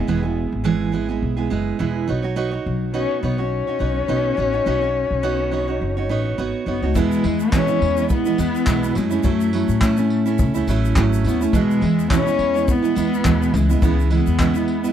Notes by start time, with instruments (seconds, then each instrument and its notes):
Already playing: cello B3
0.07 upright bass E1, steel-string acoustic guitar E2 E3 G#3 B3 E4 G#4
0.22 steel-string acoustic guitar G#3 B3 E4 G#4
0.52 upright bass G#1
0.64 steel-string acoustic guitar E2 E3 G#3 B3 E4 G#4
0.92 steel-string acoustic guitar G#3 B3 E4 G#4
1.08 steel-string acoustic guitar G#3 B3 E4 G#4
1.22 upright bass B1
1.37 steel-string acoustic guitar G#3 B3 E4 G#4
1.50 upright bass F#1, steel-string acoustic guitar G#3 B3 E4 G#4
1.79 upright bass E1, steel-string acoustic guitar E2 E3 G#3 B3 E4 G#4
2.07 upright bass B1, steel-string acoustic guitar B3 D#4 F#4 C#5
2.22 steel-string acoustic guitar D#4 F#4 C#5
2.36 steel-string acoustic guitar B3 D#4 F#4 C#5
2.51 steel-string acoustic guitar D#4 F#4 C#5
2.66 upright bass B1, cello F#3
2.94 steel-string acoustic guitar B3 D#4 F#4 C#5, cello C#4
3.23 upright bass B1, steel-string acoustic guitar B3 D#4 F#4 C#5, cello B3
3.38 cello C#4, steel-string acoustic guitar D#4 F#4 C#5
3.67 steel-string acoustic guitar D#4 F#4 C#5
3.79 upright bass B1, steel-string acoustic guitar B3 D#4 F#4 C#5
4.08 upright bass B1, steel-string acoustic guitar B3 D#4 F#4 C#5
4.37 upright bass A1, steel-string acoustic guitar B3 D#4 F#4 C#5
4.53 steel-string acoustic guitar D#4 F#4 C#5
4.66 upright bass B1, steel-string acoustic guitar B3 D#4 F#4 C#5
4.81 steel-string acoustic guitar D#4 F#4 C#5
5.11 upright bass B1
5.23 steel-string acoustic guitar B3 D#4 F#4 C#5
5.51 steel-string acoustic guitar B3 D#4 F#4 C#5
5.68 steel-string acoustic guitar D#4 F#4 C#5
5.81 upright bass F#1
5.97 steel-string acoustic guitar D#4 F#4 C#5
6.09 upright bass A1, steel-string acoustic guitar B3 D#4 F#4 C#5
6.38 upright bass G#1, steel-string acoustic guitar B3 D#4 F#4 C#5
6.66 upright bass F#1, steel-string acoustic guitar B3 D#4 F#4 C#5, cello B3
6.82 upright bass C#2, cello A3, steel-string acoustic guitar D#4 F#4 C#5
6.95 steel-string acoustic guitar E2 B2 E3 G#3 B3 E4, upright bass E2, cello G#3, kick, shaker
7.12 shaker
7.24 upright bass E2, steel-string acoustic guitar E3 G#3 B3 E4, tambourine
7.40 shaker
7.53 steel-string acoustic guitar E2 B2 E3 G#3 B3 E4, cello C#4, kick, clap, shaker
7.68 steel-string acoustic guitar E3 G#3 B3 E4, shaker
7.81 upright bass E2, tambourine
7.97 steel-string acoustic guitar E3 G#3 B3 E4, shaker
8.09 cello B3, kick, shaker
8.25 steel-string acoustic guitar E3 G#3 B3 E4, shaker
8.38 upright bass E2, steel-string acoustic guitar E3 G#3 B3 E4, tambourine, shaker
8.55 shaker
8.66 upright bass B1, steel-string acoustic guitar E2 B2 E3 G#3 B3 E4, kick, clap, shaker
8.84 shaker
8.95 upright bass F#2, steel-string acoustic guitar F#3 A3 C#4 E4, cello G#3, tambourine, shaker
9.11 steel-string acoustic guitar A3 C#4 E4, shaker
9.23 upright bass F#2, steel-string acoustic guitar F#3 A3 C#4 E4, cello A3, kick, shaker
9.41 shaker
9.53 steel-string acoustic guitar F#3 A3 C#4 E4, cello A3, tambourine
9.69 upright bass A2, shaker
9.81 steel-string acoustic guitar F#3 A3 C#4 E4, kick, clap, shaker
9.97 steel-string acoustic guitar A3 C#4 E4, shaker
10.10 tambourine
10.26 steel-string acoustic guitar A3 C#4 E4, shaker
10.38 upright bass C#2, kick, shaker
10.55 steel-string acoustic guitar A3 C#4 E4, shaker
10.67 upright bass A1, steel-string acoustic guitar F#3 A3 C#4 E4, tambourine, shaker
10.85 shaker
10.96 upright bass G#1, steel-string acoustic guitar F#3 A3 C#4 E4, kick, clap, shaker
11.13 shaker
11.24 upright bass D#2, steel-string acoustic guitar F#3 A3 C#4 E4, cello B3, tambourine, shaker
11.41 cello A3, steel-string acoustic guitar A3 C#4 E4, shaker
11.53 steel-string acoustic guitar E2 B2 E3 G#3 B3 E4, upright bass E2, cello G#3, kick, shaker
11.71 shaker
11.81 upright bass E2, steel-string acoustic guitar E3 G#3 B3 E4, tambourine
11.99 shaker
12.10 steel-string acoustic guitar E2 B2 E3 G#3 B3 E4, cello C#4, kick, clap, shaker
12.26 steel-string acoustic guitar E3 G#3 B3 E4, shaker
12.39 upright bass E2, tambourine
12.54 steel-string acoustic guitar E3 G#3 B3 E4, shaker
12.68 cello B3, kick, shaker
12.82 steel-string acoustic guitar E3 G#3 B3 E4, shaker
12.95 upright bass E2, steel-string acoustic guitar E3 G#3 B3 E4, tambourine, shaker
13.14 shaker
13.25 upright bass D#2, steel-string acoustic guitar E2 B2 E3 G#3 B3 E4, kick, clap, shaker
13.42 shaker
13.54 upright bass C#2, steel-string acoustic guitar E3 G#3 B3 E4, cello G#3, tambourine, shaker
13.70 steel-string acoustic guitar G#3 B3 E4, shaker
13.82 upright bass C#2, steel-string acoustic guitar C#3 E3 G#3 B3 E4, cello B3, kick, shaker
13.99 shaker
14.10 steel-string acoustic guitar E3 G#3 B3 E4, cello B3, tambourine
14.27 upright bass E2, shaker
14.39 steel-string acoustic guitar C#3 E3 G#3 B3 E4, kick, clap, shaker
14.55 steel-string acoustic guitar G#3 B3 E4, shaker
14.68 tambourine
14.84 steel-string acoustic guitar G#3 B3 E4, shaker